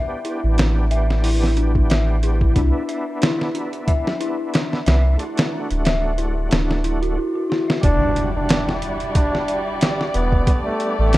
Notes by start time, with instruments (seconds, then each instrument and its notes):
Already playing: tonewheel organ B3 D4 G4, synth texture B4, synth bell E5
0.25 synth bell E4, closed hi-hat
0.43 sub bass A1
0.58 synth bell D4, snare, closed hi-hat
0.91 synth bell E5, closed hi-hat
1.10 snare
1.24 synth bell E4, open hi-hat
1.43 snare
1.54 tonewheel organ B3 D4, synth bell D4, closed hi-hat
1.60 tonewheel organ G4
1.75 kick
1.90 synth bell E5, snare, closed hi-hat
2.23 synth bell E4, closed hi-hat
2.41 kick
2.53 sub bass C2, tonewheel organ B3 D4, synth bell D4, kick, closed hi-hat
2.59 tonewheel organ E4
2.89 synth bell E5, closed hi-hat
3.22 synth bell E4, snare, closed hi-hat
3.41 snare
3.55 synth bell D4, closed hi-hat
3.73 closed hi-hat
3.88 synth bell E5, kick, closed hi-hat
4.07 snare
4.18 tonewheel organ B3 D4, synth bell E4, closed hi-hat
4.24 tonewheel organ E4
4.54 synth bell D4, snare, closed hi-hat
4.73 snare
4.86 sub bass C2, synth bell E5, snare, closed hi-hat
5.17 tonewheel organ A3 D4, synth bell E4, closed hi-hat
5.23 tonewheel organ F#4
5.37 snare, closed hi-hat
5.52 synth bell D4
5.70 sub bass D1, closed hi-hat
5.85 synth bell E5, snare, closed hi-hat
6.18 synth bell E4, closed hi-hat
6.49 sub bass D1, tonewheel organ A3 D4, synth bell D4, snare, closed hi-hat
6.55 tonewheel organ F#4
6.71 snare
6.84 synth bell E4, closed hi-hat
7.02 synth bell F#4, closed hi-hat
7.17 synth bell E4
7.35 synth bell F#4
7.50 synth bell E4, snare
7.68 synth bell E5, snare
7.81 sub bass E1, tonewheel organ G3 D4, violin section G3 E4 D5, muted trumpet D4, kick, closed hi-hat, impact
7.87 tonewheel organ F#4
8.16 closed hi-hat
8.35 muted trumpet D4
8.49 snare, closed hi-hat
8.69 snare
8.82 closed hi-hat
9.00 closed hi-hat
9.15 muted trumpet D4, kick, closed hi-hat
9.35 snare
9.46 tonewheel organ G3 D4, closed hi-hat
9.52 tonewheel organ F#4
9.81 snare, closed hi-hat
10.01 snare
10.14 sub bass E1, muted trumpet B3, closed hi-hat
10.32 kick
10.45 tonewheel organ G3 B3, violin section A3 G4, kick, closed hi-hat
10.50 tonewheel organ D4
10.66 muted trumpet A3
10.80 closed hi-hat
10.99 sub bass A1, muted trumpet A3
11.13 snare, closed hi-hat